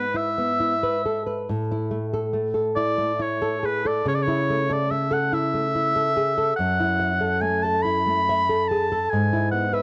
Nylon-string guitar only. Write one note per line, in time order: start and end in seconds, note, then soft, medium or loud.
0.00 1.45 G#2 medium
0.00 0.28 B4 medium
0.14 0.52 E4 medium
0.38 0.74 B3 medium
0.60 0.96 E4 medium
0.83 1.05 B4 medium
1.06 1.26 A4 soft
1.26 1.48 B4 medium
1.49 4.03 A2 medium
1.71 2.05 E4 medium
1.91 2.25 A3 medium
2.14 2.47 A4 medium
2.33 2.68 A3 medium
2.54 2.90 A4 medium
2.77 3.12 E4 medium
2.98 3.33 A3 medium
3.19 3.55 E4 medium
3.42 3.63 A4 medium
3.63 3.85 G#4 soft
3.85 4.07 A4 medium
4.06 6.52 C#3 medium
4.28 4.62 E4 medium
4.50 4.84 A3 medium
4.70 5.04 A4 medium
4.91 5.25 A3 medium
5.11 5.45 A4 medium
5.33 5.66 E4 medium
5.54 5.87 A3 medium
5.75 6.08 E4 medium
5.96 6.16 A4 medium
6.17 6.37 G#4 soft
6.38 6.58 A4 medium
6.59 9.08 F#2 medium
6.80 7.12 E4 medium
7.00 7.33 E5 medium
7.21 7.54 A4 medium
7.41 7.75 A3 medium
7.64 7.98 A4 medium
7.85 8.19 E4 medium
8.06 8.40 A3 medium
8.29 8.62 E5 medium
8.49 8.82 A4 medium
8.71 8.91 G#4 soft
8.92 9.12 A4 medium
9.13 9.82 G#2 medium
9.33 9.65 E4 medium
9.52 9.82 B3 medium
9.73 9.82 B4 medium